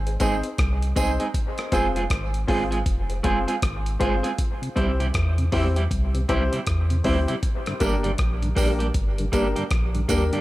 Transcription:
Already playing: G#1
0.06 G#4 C5, closed hi-hat
0.20 G#1 G#3 C4 D#4 G#4 C5, kick, closed hi-hat, tambourine
0.43 closed hi-hat
0.58 C2, kick, cross-stick, closed hi-hat
0.82 closed hi-hat
0.96 C2 G#3 C4 D#4 G#4 C5, kick, closed hi-hat, tambourine
1.20 G#3 C4 D#4 G#4, closed hi-hat
1.34 kick, closed hi-hat
1.58 cross-stick, closed hi-hat
1.72 F1 G#3 C4 F4 G#4 C5, kick, closed hi-hat, tambourine
1.96 G#3 C4 F4 G#4, closed hi-hat
2.10 G#1, kick, cross-stick, closed hi-hat
2.34 closed hi-hat
2.47 G#1 G#3 C4 F4 G#4 C5, kick, open hi-hat
2.71 G#3 C4 F4 G#4, closed hi-hat
2.86 F1, kick, closed hi-hat
3.09 G#4 C5, closed hi-hat
3.23 F1 G#3 C4 F4 G#4 C5, kick, closed hi-hat
3.48 G#3 C4 F4 G#4, closed hi-hat
3.62 G#1, kick, cross-stick, closed hi-hat
3.86 closed hi-hat
3.99 G1 G#3 C4 F4 G#4 C5, kick, closed hi-hat
4.23 G#3 C4 F4 G#4, closed hi-hat
4.38 kick, closed hi-hat
4.62 C3, closed hi-hat
4.75 C2 G3 C4 E4 G4 C5, kick, closed hi-hat
5.00 C3 G3 C4 E4 G4, closed hi-hat
5.14 E2, kick, cross-stick, closed hi-hat
5.38 C3, closed hi-hat
5.52 E2 G3 C4 E4 G4 C5, kick, open hi-hat
5.76 G3 C4 E4 G4, closed hi-hat
5.91 C2, kick, closed hi-hat
6.14 C3 G4 C5, closed hi-hat
6.28 C2 G3 C4 E4 G4 C5, kick, closed hi-hat
6.52 C3 G3 C4 E4 G4, closed hi-hat
6.67 E2, kick, cross-stick, closed hi-hat
6.90 C3, closed hi-hat
7.04 D2 G3 C4 E4 G4 C5, kick, open hi-hat
7.28 C3 G3 C4 E4 G4, closed hi-hat
7.43 kick, closed hi-hat
7.66 G2 D3, cross-stick, closed hi-hat
7.80 G1 G3 A#3 D4 G4 A#4, kick, closed hi-hat, tambourine
8.03 G2 D3 G3 A#3 D4 G4, closed hi-hat
8.18 A#1, kick, cross-stick, closed hi-hat
8.42 G2 D3, closed hi-hat
8.55 A#1 G3 A#3 D4 G4 A#4, kick, open hi-hat, tambourine
8.79 G3 A#3 D4 G4, closed hi-hat
8.94 G1, kick, closed hi-hat
9.18 G2 D3 G4 A#4, closed hi-hat
9.32 G1 G3 A#3 D4 G4 A#4, kick, closed hi-hat, tambourine
9.56 G2 D3 G3 A#3 D4 G4, closed hi-hat
9.71 A#1, kick, cross-stick, closed hi-hat
9.94 G2 D3, closed hi-hat
10.08 D#2 G3 A#3 D4 G4 A#4, kick, closed hi-hat, tambourine
10.32 G2 D3 G3 A#3 D4 G4, closed hi-hat

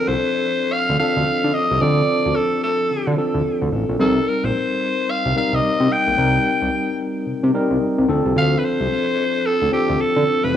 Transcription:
Already playing: F3 C4 D4 A4
0.07 C2 C5
0.72 F5
0.89 D2
0.99 F3 C4 D4 A4 F5
1.17 D2
1.44 D3
1.54 D#5
1.71 C2
1.81 D2 F3 C4 D4 A4 D5
2.26 D2
2.36 A4
2.63 A4
2.91 D3
3.07 D3
3.17 F3 C4 D4 A4
3.34 D2
3.62 D2
3.72 A1
3.89 A#1
3.99 C2 G3 C4 D#4 A4 A#4
4.28 A#4
4.44 A#1 C5
5.10 F5
5.26 C2
5.35 G3 C4 D#4 A#4 F5
5.53 C2 D#5
5.80 C3
5.92 G5
6.07 A#1
6.17 C2 G3 C4 D#4 A#4
6.62 C2
7.26 C3
7.43 C3
7.54 G3 C4 D#4 A#4
7.71 C2
7.98 C2
8.08 D2 F3 C4 D4 A4
8.25 C2
8.36 D2 F5
8.58 B4
8.64 C5
8.80 C2
9.46 A4
9.62 D2
9.72 F3 C4 D4 G4 A4
9.89 D2
10.01 A4
10.16 D3
10.44 F1 B4
10.54 F3

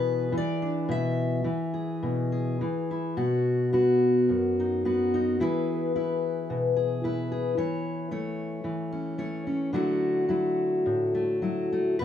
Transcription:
Already playing: B2 E3 G#4 B4
0.32 E3
0.37 D5
0.62 D4
0.89 B2 E5
1.44 E3
1.74 G#4
2.03 B2
2.32 G#4
2.61 E3
2.91 E4
3.17 B2 F#4
3.73 B3 F#4
4.29 F#2
4.60 D#4
4.85 B3 F#4
5.14 D#4
5.40 E3 E4 G#4 B4
5.96 E4 B4
6.50 B2
6.76 G#4
7.04 E4 B4
7.32 G#4
7.57 E3 C#5
8.11 A3 C#5
8.64 E3
8.92 C#4
9.18 A3 C#5
9.47 C#4
9.73 D3 F#3 A3 E4 F#4
10.29 F#3 E4
10.86 A2
11.15 A3
11.42 F#3 E4
11.72 A3
11.99 B2 B4

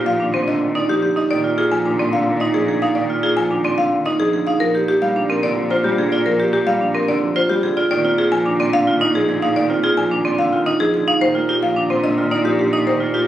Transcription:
Already playing: A#2 F4 G4
0.06 F3 F5
0.20 D#3 D4
0.34 C4 C5
0.48 D3 D#5
0.61 D#3
0.75 D#4 D5
0.89 F3 G4
1.02 D3 G4
1.16 D#4 D#5
1.30 A#2 D#3 D5
1.44 F4
1.58 F4 G#4
1.72 F3 G#5
1.86 D#3 D4
1.99 C4 D5
2.13 D3 F5
2.27 D#3
2.40 D#4 D#5
2.54 F3 G#4
2.68 D3 G#4
2.82 D#4 F5
2.95 D#3 D5
3.10 F4
3.23 F4 G#4
3.37 F3 G#5
3.51 D#3 D4
3.64 C4 D5
3.78 D3 F5
3.92 D#3
4.06 D#4 D#5
4.20 F3 G#4
4.33 D3 G#4
4.47 D#4 F5
4.60 A#2 F3 A#4
4.75 G4
4.88 G4
5.02 G3 F5
5.16 F3 D4
5.30 C4 A#4
5.43 D3 D5
5.57 F3
5.71 F4 C5
5.84 G3 G4
5.98 D3 G#4
6.12 F4 D5
6.26 F3 A#4
6.40 G4
6.53 G4
6.67 G3 F5
6.80 F3 D4
6.95 C4 A#4
7.08 D3 D5
7.22 F3
7.36 F4 C5
7.49 G3 G4
7.63 D3 G#4
7.77 F4 D5
7.91 A#2 D#3 D5
8.05 C4 F4
8.18 F4 G#4
8.32 F3 G#5
8.46 D#3 D4
8.60 C4 D5
8.73 D3 F5
8.87 D#3 F4
9.01 D#4 D#5
9.15 F3 G#4
9.29 D3 G#4
9.42 D#4 F5
9.56 D#3 D5
9.70 C4 F4
9.84 F4 G#4
9.97 F3 G#5
10.11 D#3 D4
10.25 C4 D5
10.39 D3 F5
10.52 D#3 F4
10.66 D#4 D#5
10.80 F3 G#4
10.94 D3 G#4
11.08 D#4 F5
11.21 A#2 D#3 C5
11.35 A#3 F4
11.49 F4 G4
11.62 F3 F5
11.76 D#3 D4
11.90 C4 C5
12.04 D3 D#5
12.17 D#3 F4
12.31 D#4 D5
12.45 F3 G4
12.59 D3 G4
12.73 D#4 D#5
12.86 D#3 C5
13.00 A#3 F4
13.14 F4 G4

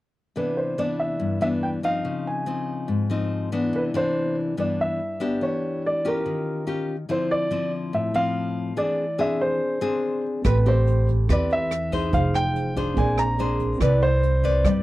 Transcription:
0.36 C3 E3 B3 D4 B4
0.57 C5
0.78 E3 B3 D4 D5
1.00 E5
1.20 G2
1.41 E3 B3 D4 E5
1.63 G5
1.83 F3 C4 D#4 F5
2.05 C#3
2.27 G#5
2.46 F3 C4 D#4
2.88 G#2
3.10 F3 C4 D#4
3.52 E3 B3 D4
3.73 C3 B4
3.94 E3 D4 C5
4.57 G2 E3 B3 D4 D5
4.81 E5
5.20 B3 D4 G4
5.41 E3 C#5
5.86 D5
6.05 C#4 F4 G4 A#4
6.26 D#3
6.67 C#4 F4 G4
7.09 D3 F3 C4 E4 C5
7.31 D5
7.51 F3 C4 E4
7.93 A2 E5
8.14 F3 C4 F5
8.76 E3 C4 D4 G#4 D5
9.18 C4 D4 G#4 E5
9.41 C5
9.81 C4 D4 G#4
10.42 A1 A3 C4 G4 A4 B4, kick, cross-stick, closed hi-hat
10.46 B4 G5 B5
10.66 C4 G4 C5, closed hi-hat
10.87 closed hi-hat
11.08 kick, closed hi-hat
11.29 E2 E3 C4 G4 B4 D5, kick, cross-stick, closed hi-hat
11.50 E5, closed hi-hat
11.71 cross-stick, closed hi-hat
11.92 D#4 G#4 C5, kick, closed hi-hat
12.10 F1 F3 D#4 G#4 C5 F5, kick, closed hi-hat
12.16 F5
12.34 G5, cross-stick, closed hi-hat
12.56 closed hi-hat
12.76 D4 G#4 C5, kick, closed hi-hat
12.94 A#1 A#3 C4 G#4 G#5, kick, closed hi-hat
12.98 A#4 D5
13.18 A#5, cross-stick, closed hi-hat
13.39 D4 G#4 C5, closed hi-hat
13.60 kick, closed hi-hat
13.78 C2 C4 E4 B4 B5, kick, cross-stick, closed hi-hat
13.82 B4 D5
14.01 C5, closed hi-hat
14.23 closed hi-hat
14.44 E4 B4 D5, kick, closed hi-hat
14.64 G2 G3 D5, kick, cross-stick, closed hi-hat

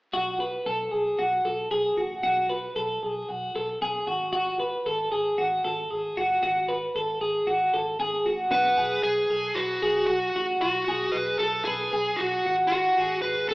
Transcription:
0.13 B1 F#4
0.40 B4
0.66 B1 A4
0.92 B1 G#4
1.18 B1 F#4
1.45 B1 A4
1.71 B1 G#4
1.97 A1 F#4
2.23 B1 F#4
2.49 B4
2.76 B1 A4
3.03 B1 G#4
3.29 B1 F#4
3.54 B1 A4
3.81 B1 G#4
4.06 G#1 F#4
4.33 F#4
4.60 B4
4.86 G#1 A4
5.12 G#1 G#4
5.38 G#1 F#4
5.64 G#1 A4
5.91 G#1 G#4
6.17 F#1 F#4
6.43 G#1 F#4
6.69 B4
6.95 G#1 A4
7.21 G#1 G#4
7.47 G#1 F#4
7.73 G#1 A4
7.99 G#1 G#4
8.25 A1 F#4
8.51 B1 F#4 B4
8.77 B1 G#4
9.03 B1 G#4
9.30 B1 A4
9.55 B1 F#4 B4
9.82 B1 G#4
10.07 B1 F#4
10.35 A1 F#4
10.61 B1 F#4
10.88 B1 G#4
11.12 B1 B4
11.39 B1 A4
11.65 B1 G#4 B4
11.93 B1 G#4
12.17 B1 F#4
12.45 G#1 F#4
12.68 F#4
12.72 F#4
12.98 G#1 G#4
13.22 G#1 B4
13.49 G#1 A4

